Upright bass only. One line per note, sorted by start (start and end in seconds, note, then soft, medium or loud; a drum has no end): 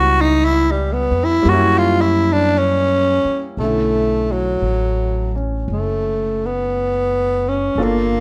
0.00 1.09 C#2 medium
1.11 1.43 F2 medium
1.45 3.22 F#2 medium
3.25 muted upright bass stroke soft
3.57 4.60 B1 soft
4.62 5.64 A1 soft
5.68 7.73 F#1 medium
7.75 8.20 G1 medium